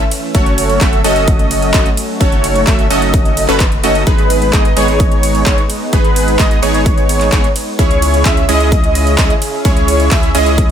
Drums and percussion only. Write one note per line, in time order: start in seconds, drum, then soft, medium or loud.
0.11 open hi-hat loud
0.11 ride medium
0.35 kick loud
0.35 closed hi-hat medium
0.46 closed hi-hat soft
0.58 open hi-hat loud
0.58 ride medium
0.70 closed hi-hat soft
0.81 kick loud
0.81 clap loud
0.81 closed hi-hat medium
0.93 closed hi-hat soft
1.04 open hi-hat loud
1.04 ride medium
1.16 closed hi-hat soft
1.28 kick loud
1.28 closed hi-hat medium
1.39 closed hi-hat soft
1.51 open hi-hat loud
1.51 ride medium
1.62 closed hi-hat soft
1.74 kick loud
1.74 clap loud
1.74 closed hi-hat medium
1.86 closed hi-hat soft
1.97 open hi-hat loud
1.97 ride medium
2.21 kick loud
2.21 closed hi-hat medium
2.32 closed hi-hat soft
2.44 open hi-hat loud
2.44 ride medium
2.56 closed hi-hat soft
2.67 kick loud
2.67 clap loud
2.67 closed hi-hat medium
2.79 closed hi-hat soft
2.90 open hi-hat medium
2.90 ride medium
3.02 closed hi-hat soft
3.14 kick loud
3.14 closed hi-hat medium
3.25 closed hi-hat soft
3.37 open hi-hat loud
3.37 ride medium
3.48 clap soft
3.48 closed hi-hat soft
3.60 kick loud
3.60 clap loud
3.60 closed hi-hat medium
3.72 closed hi-hat soft
3.84 open hi-hat medium
3.84 ride medium
3.95 closed hi-hat soft
4.07 kick loud
4.07 closed hi-hat medium
4.18 closed hi-hat soft
4.30 open hi-hat loud
4.30 ride medium
4.42 closed hi-hat soft
4.53 kick loud
4.53 clap loud
4.53 closed hi-hat medium
4.65 closed hi-hat soft
4.77 open hi-hat loud
4.77 ride medium
4.88 closed hi-hat soft
5.00 kick loud
5.00 closed hi-hat medium
5.12 closed hi-hat soft
5.23 open hi-hat loud
5.23 ride medium
5.35 closed hi-hat soft
5.46 kick loud
5.46 clap loud
5.46 closed hi-hat medium
5.58 closed hi-hat soft
5.70 open hi-hat loud
5.70 ride medium
5.93 kick loud
5.93 closed hi-hat medium
6.05 closed hi-hat soft
6.16 open hi-hat loud
6.16 ride medium
6.28 closed hi-hat soft
6.39 kick loud
6.39 clap loud
6.39 closed hi-hat medium
6.51 closed hi-hat soft
6.63 open hi-hat medium
6.63 ride medium
6.74 closed hi-hat soft
6.86 kick loud
6.86 closed hi-hat loud
6.98 closed hi-hat soft
7.09 open hi-hat loud
7.09 ride medium
7.21 clap soft
7.21 closed hi-hat soft
7.32 kick loud
7.32 clap loud
7.32 closed hi-hat medium
7.44 closed hi-hat soft
7.56 open hi-hat medium
7.56 ride medium
7.79 kick loud
7.79 closed hi-hat loud
7.91 closed hi-hat soft
8.02 open hi-hat loud
8.02 ride medium
8.14 closed hi-hat soft
8.25 kick loud
8.25 clap loud
8.25 closed hi-hat loud
8.37 closed hi-hat soft
8.49 open hi-hat medium
8.49 ride medium
8.60 closed hi-hat soft
8.72 kick loud
8.72 closed hi-hat medium
8.84 closed hi-hat soft
8.95 open hi-hat loud
8.95 ride medium
9.07 closed hi-hat soft
9.18 kick loud
9.18 clap loud
9.18 closed hi-hat loud
9.30 closed hi-hat soft
9.42 open hi-hat medium
9.42 ride medium
9.65 kick loud
9.65 closed hi-hat medium
9.77 closed hi-hat soft
9.88 open hi-hat loud
9.88 ride medium
10.00 closed hi-hat soft
10.11 kick loud
10.11 clap loud
10.11 closed hi-hat loud
10.23 closed hi-hat soft
10.35 open hi-hat medium
10.35 ride medium
10.46 closed hi-hat soft
10.58 kick loud
10.58 closed hi-hat medium